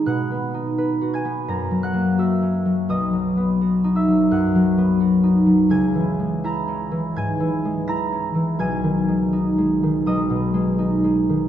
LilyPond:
<<
  \new Staff \with { instrumentName = "Harp" } { \time 4/4 \key b \major \tempo 4 = 84 <b' dis'' fis'' b'' dis''' fis'''>4. <gis'' gis'''>8 <ais'' ais'''>8 <fis'' fis'''>8 <e'' e'''>4 | <dis'' dis'''>4. <e'' e'''>8 <fis'' fis'''>2 | <gis'' gis'''>4 <ais'' ais'''>4 <gis'' gis'''>4 <ais'' ais'''>4 | <gis'' gis'''>2 <dis'' dis'''>2 | }
  \new Staff \with { instrumentName = "Harp" } { \clef bass \time 4/4 \key b \major \tuplet 3/2 { <b, b dis'>8 b8 dis'8 b'8 fis'8 b8 fis,8 fis8 ais8 fis'8 cis'8 fis8 } | \tuplet 3/2 { b,,8 fis8 b8 fis'8 dis'8 fis8 fis,8 fis8 b8 fis'8 dis'8 fis8 } | \tuplet 3/2 { cis,8 e8 gis8 e'8 cis'8 e8 gis,8 e8 gis8 e'8 cis'8 e8 } | \tuplet 3/2 { b,,8 dis8 gis8 dis'8 gis8 dis8 b,,8 b,8 gis8 dis'8 gis8 dis8 } | }
>>